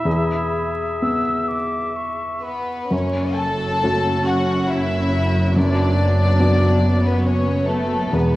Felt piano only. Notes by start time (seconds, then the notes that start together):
Already playing: B2
0.05 E2
1.02 B3
2.91 F#2
3.82 A3 C#4 F#4
5.56 F#2
6.39 B3 F#4
8.13 E2